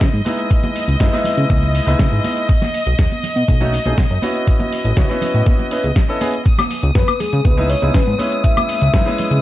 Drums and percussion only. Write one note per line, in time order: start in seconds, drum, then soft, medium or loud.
0.01 kick loud
0.01 snare loud
0.01 closed hi-hat medium
0.01 shaker soft
0.26 open hi-hat medium
0.26 high conga medium
0.26 shaker medium
0.39 closed hi-hat medium
0.39 shaker soft
0.51 kick loud
0.51 closed hi-hat medium
0.51 shaker soft
0.63 closed hi-hat soft
0.63 high conga loud
0.63 low conga medium
0.76 open hi-hat loud
0.76 shaker medium
0.89 closed hi-hat medium
0.89 shaker soft
1.00 kick loud
1.00 snare loud
1.00 closed hi-hat medium
1.00 shaker soft
1.13 snare soft
1.13 closed hi-hat soft
1.13 high conga medium
1.24 open hi-hat loud
1.24 low conga medium
1.24 shaker medium
1.38 closed hi-hat soft
1.38 shaker soft
1.50 kick loud
1.50 closed hi-hat medium
1.50 high conga medium
1.50 shaker soft
1.63 closed hi-hat soft
1.63 low conga medium
1.75 open hi-hat loud
1.75 shaker medium
1.87 closed hi-hat soft
1.87 high conga medium
1.87 shaker soft
1.99 kick loud
1.99 snare loud
1.99 closed hi-hat medium
1.99 shaker soft
2.24 open hi-hat loud
2.24 high conga medium
2.24 shaker medium
2.37 closed hi-hat soft
2.37 shaker soft
2.49 kick loud
2.49 closed hi-hat medium
2.49 shaker soft
2.62 snare soft
2.62 closed hi-hat soft
2.62 high conga medium
2.62 low conga medium
2.74 open hi-hat loud
2.74 shaker medium
2.87 closed hi-hat medium
2.87 shaker soft
2.99 kick loud
2.99 snare loud
2.99 closed hi-hat medium
2.99 shaker soft
3.12 closed hi-hat soft
3.12 high conga medium
3.23 open hi-hat loud
3.23 low conga medium
3.23 shaker medium
3.37 closed hi-hat soft
3.37 shaker soft
3.48 kick loud
3.48 closed hi-hat medium
3.48 high conga medium
3.48 shaker soft
3.61 closed hi-hat soft
3.61 low conga medium
3.74 open hi-hat loud
3.74 shaker medium
3.86 closed hi-hat soft
3.86 high conga medium
3.86 shaker soft
3.98 kick loud
3.98 snare loud
3.98 closed hi-hat medium
3.98 shaker soft
4.22 open hi-hat loud
4.22 high conga medium
4.22 shaker medium
4.36 closed hi-hat soft
4.36 shaker soft
4.47 kick loud
4.47 closed hi-hat medium
4.47 shaker soft
4.60 closed hi-hat soft
4.60 high conga medium
4.60 low conga medium
4.73 open hi-hat loud
4.73 shaker medium
4.85 closed hi-hat soft
4.85 shaker soft
4.97 kick loud
4.97 snare loud
4.97 closed hi-hat medium
4.97 shaker soft
5.10 snare soft
5.10 closed hi-hat soft
5.10 high conga medium
5.22 open hi-hat loud
5.22 low conga medium
5.22 shaker medium
5.35 closed hi-hat soft
5.35 shaker soft
5.46 kick loud
5.46 closed hi-hat medium
5.46 high conga medium
5.46 shaker soft
5.59 closed hi-hat soft
5.59 low conga medium
5.71 open hi-hat loud
5.71 shaker medium
5.84 closed hi-hat soft
5.84 high conga medium
5.84 shaker soft
5.96 kick loud
5.96 snare loud
5.96 closed hi-hat medium
5.96 shaker soft
6.21 open hi-hat loud
6.21 high conga loud
6.21 shaker medium
6.34 closed hi-hat soft
6.34 shaker soft
6.46 kick loud
6.46 closed hi-hat medium
6.46 shaker soft
6.58 snare soft
6.58 closed hi-hat soft
6.58 high conga medium
6.58 low conga medium
6.58 high woodblock medium
6.71 open hi-hat loud
6.71 shaker medium
6.83 closed hi-hat soft
6.83 shaker soft
6.95 kick loud
6.95 snare loud
6.95 closed hi-hat medium
6.95 shaker soft
7.08 closed hi-hat soft
7.08 high conga medium
7.08 high woodblock medium
7.20 open hi-hat loud
7.20 low conga medium
7.20 shaker medium
7.33 closed hi-hat soft
7.33 shaker soft
7.45 kick loud
7.45 closed hi-hat medium
7.45 high conga medium
7.45 shaker soft
7.58 closed hi-hat soft
7.58 low conga medium
7.70 open hi-hat loud
7.70 shaker medium
7.82 closed hi-hat soft
7.82 high conga medium
7.82 shaker soft
7.94 kick loud
7.94 snare loud
7.94 closed hi-hat medium
7.94 shaker soft
8.19 open hi-hat loud
8.19 high conga medium
8.19 shaker medium
8.32 closed hi-hat soft
8.32 shaker soft
8.44 kick loud
8.44 closed hi-hat medium
8.44 shaker soft
8.57 closed hi-hat soft
8.57 high conga medium
8.57 low conga medium
8.57 high woodblock medium
8.69 open hi-hat loud
8.69 shaker medium
8.82 closed hi-hat soft
8.82 shaker soft
8.94 kick loud
8.94 snare loud
8.94 closed hi-hat medium
8.94 shaker soft
9.06 snare soft
9.06 closed hi-hat soft
9.06 high conga medium
9.18 open hi-hat loud
9.18 low conga medium
9.18 shaker medium
9.31 closed hi-hat medium
9.31 shaker soft